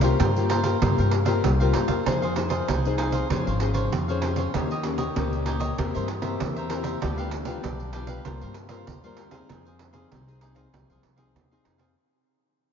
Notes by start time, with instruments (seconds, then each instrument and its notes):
Already playing: upright bass C2, nylon-string guitar C3
0.01 nylon-string guitar A#3 F4 G4, cavaquinho A#4 C5 F5, pandeiro
0.19 upright bass G2, nylon-string guitar G3, cavaquinho F4 A#4 C5 F5, pandeiro
0.36 nylon-string guitar A#3 F4 G4, pandeiro
0.49 cavaquinho F4 A#4 C5 F5, pandeiro
0.63 nylon-string guitar A#3 F4 G4, cavaquinho A#4 C5 F5, pandeiro
0.81 upright bass G2, nylon-string guitar C3 A#3 F4 G4, cavaquinho F4 A#4 C5 F5, pandeiro
0.98 upright bass G2, cavaquinho A#4 C5 F5, pandeiro
1.11 muted cavaquinho stroke, pandeiro
1.25 nylon-string guitar A#3 F4 G4, cavaquinho A#4 C5 F5, pandeiro
1.44 upright bass C2, nylon-string guitar G3, pandeiro
1.60 nylon-string guitar A#3 F4 G4, cavaquinho A#4 C5 F5, pandeiro
1.73 upright bass G2, cavaquinho F4 A#4 C5 F5, pandeiro
1.88 upright bass F2, cavaquinho A#4 C5 F5, pandeiro
2.05 upright bass F2, nylon-string guitar F3 D#4 G#4 C5, cavaquinho D#4 G#4 C5 F5, pandeiro
2.22 cavaquinho G#4 C5 F5, pandeiro
2.35 nylon-string guitar D#4 G#4 C5, muted cavaquinho stroke, pandeiro
2.49 cavaquinho G#4 C5 F5, pandeiro
2.67 upright bass C2, nylon-string guitar C3, cavaquinho D#4 G#4 C5 F5, pandeiro
2.85 nylon-string guitar D#4 G#4 C5, pandeiro
2.98 cavaquinho D#4 G#4 C5 F5, pandeiro
3.12 cavaquinho G#4 C5 F5, pandeiro
3.30 upright bass F2, nylon-string guitar F3 C#4 G#4 C5, cavaquinho F4 C5 C#5 F5, pandeiro
3.47 upright bass G#1, cavaquinho C5 C#5 F5, pandeiro
3.60 nylon-string guitar C#4 G#4 C5, muted cavaquinho stroke, pandeiro
3.74 cavaquinho C5 C#5 F5, pandeiro
3.92 upright bass F2, nylon-string guitar F3, pandeiro
4.08 nylon-string guitar C#4 G#4 C5, cavaquinho C5 C#5 F5, pandeiro
4.22 cavaquinho F4 C5 C#5 F5, pandeiro
4.36 cavaquinho C5 C#5 F5, pandeiro
4.54 upright bass D#2, nylon-string guitar D#3 A#3 C#4 G4, cavaquinho D#4 G4 C#5 D#5, pandeiro
4.71 cavaquinho G4 C#5 D#5, pandeiro
4.83 nylon-string guitar A#3 C#4 G4, muted cavaquinho stroke, pandeiro
4.98 cavaquinho G4 C#5 D#5, pandeiro
5.16 upright bass C#2, nylon-string guitar A#2 A#3 C#4 G4, cavaquinho D#4 G4 C#5 D#5, pandeiro
5.33 pandeiro
5.46 cavaquinho D#4 G4 C#5 D#5, pandeiro
5.60 cavaquinho G4 C#5 D#5, pandeiro
5.78 upright bass E2, nylon-string guitar E3 A#3 C4 G4, cavaquinho E4 A#4 C5 E5, pandeiro
5.94 upright bass G2, cavaquinho A#4 C5 E5, pandeiro
6.08 muted cavaquinho stroke, pandeiro
6.21 nylon-string guitar A#3 C4 G4, cavaquinho A#4 C5 E5, pandeiro
6.40 upright bass E2, nylon-string guitar E3, pandeiro
6.56 cavaquinho A#4 C5 E5, pandeiro
6.69 nylon-string guitar A#3 C4 G4, cavaquinho E4 A#4 C5 E5, pandeiro
6.83 cavaquinho A#4 C5 E5, pandeiro
7.01 upright bass D2, nylon-string guitar D3 G3 B3 F4, cavaquinho D4 G4 B4 F5, pandeiro
7.18 cavaquinho G4 B4 F5, pandeiro
7.31 muted cavaquinho stroke, pandeiro
7.45 nylon-string guitar G3 B3 F4, cavaquinho G4 B4 F5, pandeiro
7.63 upright bass B1, nylon-string guitar D3, cavaquinho D4 G4 B4 F5, pandeiro
7.80 pandeiro
7.92 nylon-string guitar G3 B3 F4, cavaquinho D4 G4 B4 F5, pandeiro
8.07 cavaquinho G4 B4 F5, pandeiro
8.25 upright bass C2, nylon-string guitar C3 G3 A#3 F4, cavaquinho F4 A#4 C5 F5, pandeiro
8.41 upright bass G2, cavaquinho A#4 C5 F5, pandeiro
8.54 muted cavaquinho stroke, pandeiro
8.69 nylon-string guitar G3 A#3 F4, cavaquinho A#4 C5 F5, pandeiro
8.87 upright bass D#2, nylon-string guitar G2, pandeiro
9.04 nylon-string guitar G3 A#3 F4, cavaquinho A#4 C5 F5, pandeiro
9.17 cavaquinho F4 A#4 C5 F5, pandeiro
9.31 nylon-string guitar C4 D#4 G#4, cavaquinho A#4 C5 F5, pandeiro
9.49 upright bass F2, nylon-string guitar F3, cavaquinho D#4 G#4 C5 F5, pandeiro
9.65 cavaquinho G#4 C5 F5, pandeiro
9.79 muted cavaquinho stroke, pandeiro
9.93 nylon-string guitar C4 D#4 G#4, cavaquinho G#4 C5 F5, pandeiro
10.11 upright bass C2, nylon-string guitar C3, cavaquinho D#4 G#4 C5 F5, pandeiro
10.27 nylon-string guitar C4 D#4 G#4, pandeiro
10.41 cavaquinho D#4 G#4 C5 F5, pandeiro
10.55 nylon-string guitar C4 D#4 G#4, cavaquinho G#4 C5 F5, pandeiro
10.73 upright bass C2, nylon-string guitar F3 C4 D#4 G#4, cavaquinho D#4 G#4 C5 F5, pandeiro
10.90 upright bass C2, cavaquinho G#4 C5 F5, pandeiro
11.02 upright bass C2, muted cavaquinho stroke, pandeiro
11.16 nylon-string guitar C4 D#4 G#4, cavaquinho G#4 C5 F5, pandeiro
11.35 upright bass D#2, nylon-string guitar C3, pandeiro
11.51 nylon-string guitar C4 D#4 G#4, cavaquinho G#4 C5 F5, pandeiro
11.64 upright bass F2, cavaquinho D#4 G#4 C5 F5, pandeiro
11.78 cavaquinho G#4 C5 F5, pandeiro